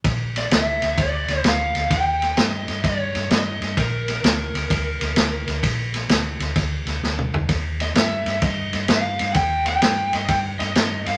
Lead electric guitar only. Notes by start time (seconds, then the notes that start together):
0.38 D5
0.53 E5
1.00 D5
1.46 F5
1.92 G5
2.38 D#5
2.85 C#5
3.31 D#5
3.79 A#4
4.24 A#4
7.81 D#5
7.98 E5
8.45 D#5
8.91 F5
9.33 F#5 G5
9.66 G5
10.14 D#5
10.29 G5
10.59 D#5
11.07 F5